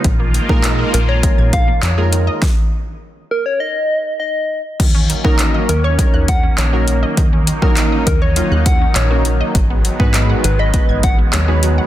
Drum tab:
CC |----------------|----------------|x---------------|----------------|
HH |x-x-x-x-x-x-x-x-|----------------|x-x-x-x-x-x-x-x-|x-x-x-x-x-x-x-x-|
CP |----x-------x---|----------------|----x-------x---|----x-------x---|
SD |----------------|o---------------|----------------|----------------|
BD |o--o----o-o-----|o---------------|o--o----o-o-----|o--o--o---o-----|

CC |----------------|
HH |x-x-x-x-x-x-x-x-|
CP |----x-------x---|
SD |----------------|
BD |o--o----o-o-----|